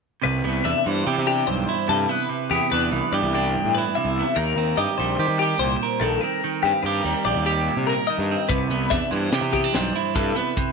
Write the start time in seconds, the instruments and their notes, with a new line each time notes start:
0.21 picked electric bass C2, clean electric guitar C3 B4
0.44 picked electric bass C2, clean electric guitar B3
0.64 picked electric bass E2, clean electric guitar D4 E5
0.86 picked electric bass G2, clean electric guitar E3 C5
1.07 picked electric bass C3, clean electric guitar G4
1.18 picked electric bass C3
1.27 clean electric guitar D4 G4
1.47 picked electric bass B1, clean electric guitar G2 C5
1.69 clean electric guitar E4
1.88 picked electric bass G2, clean electric guitar C3 A4
2.09 clean electric guitar B3 B4
2.29 clean electric guitar C3
2.51 picked electric bass E2, clean electric guitar B3 G4
2.72 picked electric bass E2, clean electric guitar D4 B4
2.92 picked electric bass C2, clean electric guitar E3
3.12 picked electric bass G2, clean electric guitar G4 D5
3.22 picked electric bass C2
3.34 clean electric guitar D4 G4
3.55 clean electric guitar G2
3.64 picked electric bass A2
3.75 clean electric guitar E4 B4
3.95 clean electric guitar C3 E5
4.05 picked electric bass C2
4.19 clean electric guitar B3
4.36 picked electric bass D#2, clean electric guitar D#3 A#4
4.56 picked electric bass D#2, clean electric guitar C4
4.77 picked electric bass G2, clean electric guitar G4 D#5
4.98 picked electric bass A#1, clean electric guitar G3 C5
5.19 picked electric bass D#3, clean electric guitar G4
5.28 picked electric bass D#3
5.39 clean electric guitar G4
5.59 picked electric bass C2, clean electric guitar A#2 C5
5.83 clean electric guitar A#4
6.00 picked electric bass A#1, clean electric guitar D#3 A4
6.21 clean electric guitar C4 A#4
6.44 clean electric guitar D#3
6.63 picked electric bass G2, clean electric guitar C4 G4
6.83 picked electric bass G2, clean electric guitar G4 A#4
7.04 picked electric bass D#2, clean electric guitar G3
7.25 picked electric bass A#1, clean electric guitar G4 D5
7.35 picked electric bass D#2
7.46 clean electric guitar G4
7.68 clean electric guitar A#2
7.77 picked electric bass C3
7.87 clean electric guitar A#4
8.07 clean electric guitar D#3 D#5
8.18 picked electric bass G2
8.31 clean electric guitar C4
8.49 picked electric bass C2, clean electric guitar C3 B4, kick, closed hi-hat
8.70 picked electric bass C2, clean electric guitar B3, closed hi-hat
8.90 picked electric bass E2, clean electric guitar D4 E5, kick, snare, closed hi-hat
9.11 picked electric bass G2, clean electric guitar E3 C5, closed hi-hat
9.32 picked electric bass C3, clean electric guitar G4, snare, closed hi-hat
9.41 picked electric bass C3
9.52 clean electric guitar B3 G4, kick, closed hi-hat
9.64 clean electric guitar D4
9.73 picked electric bass B1, clean electric guitar G2 C5, snare, closed hi-hat
9.95 clean electric guitar E4, closed hi-hat
10.15 picked electric bass G2, clean electric guitar C3 A4, kick, snare, closed hi-hat
10.35 clean electric guitar B3 B4, closed hi-hat
10.57 clean electric guitar C3, kick, closed hi-hat